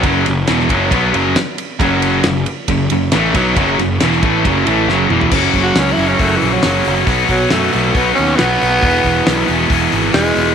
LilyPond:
<<
  \new Staff \with { instrumentName = "Tenor saxophone" } { \time 4/4 \key b \major \tempo 4 = 136 r1 | r1 | r1 | \tuplet 3/2 { r4 fis'8 cis'8 e'8 cis'8 a8 e8 fis8~ } fis8 r8 |
r8 fis8 a4 b8 cis'8 b4~ | b2 r4 gis4 | }
  \new Staff \with { instrumentName = "Distorted electric guitar" } { \clef bass \time 4/4 \key b \major <fis, cis fis>8 <fis, cis>8 <e, b, e>8 <fis, cis fis>8 <b, fis b>8 <fis, cis fis>8 r4 | <fis, cis fis>4 <fis, cis>8 r8 <fis, cis>8 <fis, cis>8 <a, e a>8 <b, fis b>8 | <fis, cis fis>8 <fis, cis>8 <e, b, e>8 <a, e a>8 <fis, cis fis>8 <a, e a>8 <fis, cis fis>8 <e, b, e>8 | <fis, cis fis ais cis' fis'>2 <fis, cis fis ais cis' fis'>2 |
<b, fis b dis' fis'>2 <b, fis b dis' fis'>2 | <e, b, e gis b gis'>2 <e, b, e gis b gis'>2 | }
  \new Staff \with { instrumentName = "Distorted electric guitar" } { \clef bass \time 4/4 \key b \major <fis, cis fis>8 <fis, cis>8 <e, b, e>8 <fis, cis fis>8 <b, fis b>8 <fis, cis fis>8 r4 | <fis, cis fis>4 <fis, cis>8 r8 <fis, cis>8 <fis, cis>8 <a, e a>8 <b, fis b>8 | <fis, cis fis>8 <fis, cis>8 <e, b, e>8 <a, e a>8 <fis, cis fis>8 <a, e a>8 <fis, cis fis>8 <e, b, e>8 | r1 |
r1 | r1 | }
  \new Staff \with { instrumentName = "Overdriven electric guitar" } { \clef bass \time 4/4 \key b \major <fis, cis fis>8 <fis, cis>8 <e, b, e>8 <fis, cis fis>8 <b, fis b>8 <fis, cis fis>8 r4 | <fis, cis fis>4 <fis, cis>8 r8 <fis, cis>8 <fis, cis>8 <a, e a>8 <b, fis b>8 | <fis, cis fis>8 <fis, cis>8 <e, b, e>8 <a, e a>8 <fis, cis fis>8 <a, e a>8 <fis, cis fis>8 <e, b, e>8 | <fis, cis fis>4. <fis, cis fis>4. <fis, cis fis>4 |
<b, fis b>4. <b, fis b>4. <b, fis b>4 | <e, b, e>4. <e, b, e>4. <e, b, e>4 | }
  \new Staff \with { instrumentName = "Picked electric bass" } { \clef bass \time 4/4 \key b \major fis,,8 fis,,8 e,,8 fis,,8 b,,8 fis,,8 r4 | fis,,4 fis,,8 r8 fis,,8 fis,,8 a,,8 b,,8 | fis,,8 fis,,8 e,,8 a,,8 fis,,8 a,,8 fis,,8 e,,8 | fis,,8 fis,,8 cis,8 fis,,8 fis,,8 ais,,8 fis,,8 fis,,8 |
b,,8 b,,8 fis,8 b,,8 b,,8 dis,8 b,,8 b,,8 | e,,8 e,,8 b,,8 e,,8 e,,8 gis,,8 e,,8 e,,8 | }
  \new DrumStaff \with { instrumentName = "Drums" } \drummode { \time 4/4 <bd cymr>8 <cymr sn>8 <cymr sn>16 sn16 <bd cymr>8 <bd cymr>8 cymr8 <cymr sn>8 cymr8 | <bd cymr>8 cymr8 <cymr sn>8 cymr8 <bd cymr>8 cymr8 <cymr sn>8 <bd cymr>8 | <bd cymr>8 <cymr sn>8 <cymr sn>16 sn16 <bd cymr>8 <bd cymr>8 cymr8 sn8 toml16 tomfh16 | <cymc bd>8 <hho bd>8 <hho sn>8 hho8 <hho bd>8 hho8 <hho sn>8 hho8 |
<hho bd>8 <hho bd>8 <hho sn>8 hho8 <hho bd>8 hho8 <hho sn>8 hho8 | <hho bd>8 <hho bd>8 <hho sn>8 hho8 <hho bd>8 hho8 <hho sn>8 hho8 | }
>>